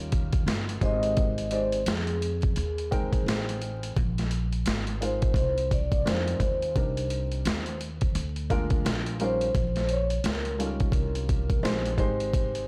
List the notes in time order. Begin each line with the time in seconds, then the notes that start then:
Already playing: D#2 G3 C#4 D#4 F4 A#4
0.12 kick, closed hi-hat
0.33 kick, closed hi-hat
0.46 G1, snare, closed hi-hat
0.69 closed hi-hat
0.81 G#1 G#3 C4 D#4 G4 C5 D#5, kick, closed hi-hat
1.03 closed hi-hat
1.17 kick, closed hi-hat
1.38 closed hi-hat
1.51 G#3 C4 D#4 G4 C5 D5, closed hi-hat
1.72 closed hi-hat
1.86 F2 G#4, snare, closed hi-hat
2.07 closed hi-hat
2.22 closed hi-hat
2.42 kick, closed hi-hat
2.56 D#2, closed hi-hat
2.78 closed hi-hat
2.91 G#3 C4 D#4 A#4 G5, kick, closed hi-hat
3.13 kick, closed hi-hat
3.26 A1, snare, closed hi-hat
3.49 closed hi-hat
3.62 closed hi-hat
3.83 closed hi-hat
3.96 A#1, kick, closed hi-hat
4.18 snare, closed hi-hat
4.31 closed hi-hat
4.53 closed hi-hat
4.66 G#1, snare, closed hi-hat
4.87 closed hi-hat
5.01 G#3 C4 D#4 F4 A#4 C5, closed hi-hat
5.22 kick, closed hi-hat
5.34 C2, kick, closed hi-hat
5.58 closed hi-hat
5.71 D5, kick, closed hi-hat
5.92 kick, closed hi-hat
6.05 F2 G#3 C4 D4 F4 A#4 C5, snare, closed hi-hat
6.12 D#4
6.28 closed hi-hat
6.40 D#2, kick, closed hi-hat
6.62 closed hi-hat
6.76 C2 G3 C4 D4 D#4 A#4, kick, closed hi-hat
6.97 closed hi-hat
7.10 closed hi-hat
7.32 closed hi-hat
7.45 D#2, snare, closed hi-hat
7.66 closed hi-hat
7.81 closed hi-hat
8.01 kick, closed hi-hat
8.15 D2, closed hi-hat
8.36 closed hi-hat
8.50 G#3 A#3 D4 F4 A#4, kick, closed hi-hat
8.70 kick, closed hi-hat
8.85 A#1, snare, closed hi-hat
9.06 closed hi-hat
9.20 G3 C#4 D#4 F4 A#4 C5, closed hi-hat
9.41 closed hi-hat
9.55 A#1, kick, closed hi-hat
9.76 snare, closed hi-hat
9.89 C#5, closed hi-hat
10.10 closed hi-hat
10.24 C#2 A#4, snare, closed hi-hat
10.45 closed hi-hat
10.59 G3 C#4 D#4 F4 A4, closed hi-hat
10.67 A#4
10.80 kick, closed hi-hat
10.92 C2, kick, closed hi-hat
11.15 closed hi-hat
11.29 kick, closed hi-hat
11.50 kick, closed hi-hat
11.63 A#1 G#3 C4 D#4 G4 C5, snare, closed hi-hat
11.86 closed hi-hat
11.98 G#1 G#3 C4 D#4 G4 C5, kick, closed hi-hat
12.20 closed hi-hat
12.34 kick, closed hi-hat
12.55 closed hi-hat